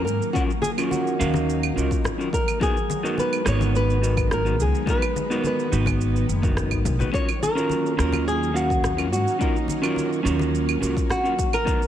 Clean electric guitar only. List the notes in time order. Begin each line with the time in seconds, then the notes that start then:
0.34 C#4 F4 F#4 A#4
0.78 C#4 F4 F#4 A#4
1.19 C#4 F#4 A#4 F5
1.76 C#4 F4 F#4 A#4
2.18 C#4 F4 F#4 A#4
2.60 B3 D#4 F#4 A#4
3.03 B3 D#4 F#4 A#4
3.45 B3 D#4 F#4 A#4
4.02 B3 D#4 F#4 A#4
4.45 B3 D#4 F#4 A#4
4.86 B3 D#4 F#4 A#4
5.30 B3 D#4 F#4 A#4
5.72 B3 D#4 F#4 B4
6.42 B3 D#4 F#4 A#4
6.99 B3 D#4 F#4 B4
7.13 C#4 F4 F#4 A#4
7.55 C#4 F4 F#4 A#4
7.97 C#4 F4 F#4 A#4
8.53 C#4 F#4 A#4 F5
8.97 C#4 F4 F#4 A#4
9.39 C#4 F4 F#4 A#4
9.82 C#4 F4 F#4 A#4
10.23 C#4 F4 F#4 A#4
10.81 C#4 F4 F#4 A#4
11.23 C#4 F4 F#4 A#4
11.65 B3 D#4 F#4 A#4